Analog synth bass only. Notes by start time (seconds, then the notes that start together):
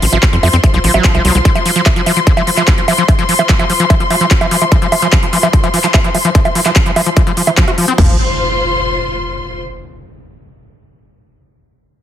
0.02 A1
0.13 A1
0.33 F2
0.43 F2
0.53 F2
0.74 C2
0.84 A1
0.94 A1
1.15 C2
1.25 C2
1.35 C2
7.98 F1